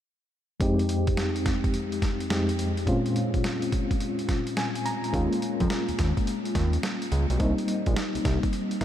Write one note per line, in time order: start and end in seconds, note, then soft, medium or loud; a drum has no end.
0.60 2.27 F2 medium
0.60 2.27 G#3 medium
0.60 2.27 C4 medium
0.60 2.28 D#4 medium
0.60 2.28 G4 medium
0.60 kick loud
0.60 closed hi-hat medium
0.79 closed hi-hat soft
0.89 closed hi-hat medium
1.07 kick medium
1.07 closed hi-hat soft
1.17 snare loud
1.17 closed hi-hat medium
1.36 closed hi-hat soft
1.46 kick loud
1.46 snare medium
1.46 closed hi-hat medium
1.64 kick medium
1.64 closed hi-hat soft
1.74 closed hi-hat medium
1.92 closed hi-hat soft
2.02 kick medium
2.02 snare medium
2.02 closed hi-hat medium
2.20 closed hi-hat soft
2.30 2.87 F2 medium
2.30 2.85 G#3 soft
2.30 2.86 C4 soft
2.30 2.88 D#4 soft
2.30 2.88 G4 medium
2.30 snare loud
2.30 closed hi-hat medium
2.49 closed hi-hat medium
2.59 closed hi-hat medium
2.77 closed hi-hat soft
2.86 5.09 A#2 medium
2.86 5.09 G#3 medium
2.86 5.10 C4 medium
2.86 5.10 C#4 medium
2.86 5.10 F4 medium
2.86 kick loud
2.86 closed hi-hat medium
3.06 closed hi-hat soft
3.16 closed hi-hat medium
3.34 kick medium
3.34 closed hi-hat soft
3.44 snare medium
3.44 closed hi-hat medium
3.62 closed hi-hat medium
3.72 kick medium
3.72 closed hi-hat medium
3.91 kick medium
3.91 closed hi-hat soft
4.00 closed hi-hat medium
4.19 closed hi-hat soft
4.29 kick medium
4.29 snare medium
4.29 closed hi-hat medium
4.47 closed hi-hat medium
4.57 4.83 G#5 medium
4.57 snare loud
4.57 closed hi-hat medium
4.75 closed hi-hat medium
4.86 5.12 A#5 medium
4.86 closed hi-hat medium
5.04 closed hi-hat soft
5.13 5.28 D#2 loud
5.13 7.36 G#3 medium
5.13 7.36 A#3 medium
5.13 7.36 C#4 medium
5.13 7.37 F4 medium
5.13 kick loud
5.13 closed hi-hat medium
5.33 closed hi-hat soft
5.42 closed hi-hat medium
5.60 5.68 F2 loud
5.60 kick medium
5.60 closed hi-hat soft
5.70 snare loud
5.70 closed hi-hat medium
5.89 5.93 D#2 soft
5.89 closed hi-hat medium
5.99 6.13 D#2 medium
5.99 kick loud
5.99 snare medium
5.99 closed hi-hat medium
6.17 kick medium
6.17 closed hi-hat soft
6.27 closed hi-hat medium
6.45 closed hi-hat soft
6.55 6.78 D#2 medium
6.55 kick medium
6.55 snare medium
6.55 closed hi-hat medium
6.73 closed hi-hat soft
6.83 snare loud
6.83 closed hi-hat medium
7.02 closed hi-hat medium
7.12 7.26 C#2 loud
7.12 closed hi-hat medium
7.30 7.38 B1 medium
7.30 closed hi-hat medium
7.38 7.55 C2 loud
7.38 8.85 G3 medium
7.38 8.85 A#3 medium
7.38 8.85 C4 medium
7.38 8.85 D#4 medium
7.38 kick loud
7.38 closed hi-hat medium
7.58 closed hi-hat soft
7.68 closed hi-hat medium
7.86 7.95 A#1 medium
7.86 kick medium
7.86 closed hi-hat soft
7.96 snare loud
7.96 closed hi-hat medium
8.15 8.19 C2 soft
8.15 closed hi-hat medium
8.25 8.40 C2 medium
8.25 kick medium
8.25 snare medium
8.25 closed hi-hat medium
8.43 kick medium
8.43 closed hi-hat soft
8.53 closed hi-hat medium
8.71 closed hi-hat soft
8.81 8.85 C2 medium
8.81 kick medium
8.81 snare medium
8.81 closed hi-hat medium